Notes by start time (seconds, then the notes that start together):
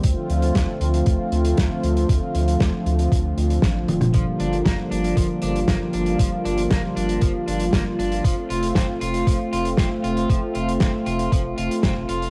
Already playing: C4
0.04 D2 D3 F3 A3 F4, kick, closed hi-hat
0.30 D2, closed hi-hat
0.42 closed hi-hat
0.55 D2, kick, snare, closed hi-hat
0.81 D2, closed hi-hat
0.94 closed hi-hat
1.06 D2, kick, closed hi-hat
1.32 D2, closed hi-hat
1.45 closed hi-hat
1.57 D2, kick, snare, closed hi-hat
1.83 D2, closed hi-hat
1.97 closed hi-hat
2.09 D2, kick, closed hi-hat
2.35 D2, closed hi-hat
2.48 closed hi-hat
2.60 D2, kick, snare, closed hi-hat
2.86 D2, closed hi-hat
2.99 closed hi-hat
3.12 D2, kick, closed hi-hat
3.37 D2, closed hi-hat
3.50 closed hi-hat
3.62 A1, kick, snare, closed hi-hat
3.88 D1, closed hi-hat, high tom
4.01 closed hi-hat, mid tom
4.14 G1 F3 G3 A#3 F4, kick, closed hi-hat
4.40 G1 D4, closed hi-hat
4.53 closed hi-hat
4.66 G1 A#3, kick, snare, closed hi-hat
4.91 G1 D4, closed hi-hat
5.04 closed hi-hat
5.17 G1 F3, kick, closed hi-hat
5.42 G1 D4, closed hi-hat
5.56 closed hi-hat
5.68 G1 A#3, kick, snare, closed hi-hat
5.93 G1 D4, closed hi-hat
6.06 closed hi-hat
6.19 G1 F3, kick, closed hi-hat
6.45 G1 D4, closed hi-hat
6.58 closed hi-hat
6.71 G1 A#3, kick, snare, closed hi-hat
6.96 G1 D4, closed hi-hat
7.09 closed hi-hat
7.21 G1 F3, kick, closed hi-hat
7.48 G1 D4, closed hi-hat
7.60 closed hi-hat
7.73 G1 A#3, kick, snare, closed hi-hat
7.99 G1 D4, closed hi-hat
8.12 closed hi-hat
8.24 F1 F3 A3 C4, kick, closed hi-hat
8.50 F1 F4, closed hi-hat
8.63 closed hi-hat
8.75 F1 C4, kick, snare, closed hi-hat
9.01 F1 F4, closed hi-hat
9.14 closed hi-hat
9.27 F1 F3, kick, closed hi-hat
9.53 F1 F4, closed hi-hat
9.65 closed hi-hat
9.77 F1 C4, kick, snare, closed hi-hat
10.04 F1 F4, closed hi-hat
10.17 closed hi-hat
10.30 F1 F3, kick, closed hi-hat
10.55 F1 F4, closed hi-hat
10.69 closed hi-hat
10.80 F1 C4, kick, snare, closed hi-hat
11.06 F1 F4, closed hi-hat
11.19 closed hi-hat
11.32 F1 F3, kick, closed hi-hat
11.58 F1 F4, closed hi-hat
11.71 closed hi-hat
11.83 F1 C4, kick, snare, closed hi-hat
12.09 F1 F4, closed hi-hat
12.22 closed hi-hat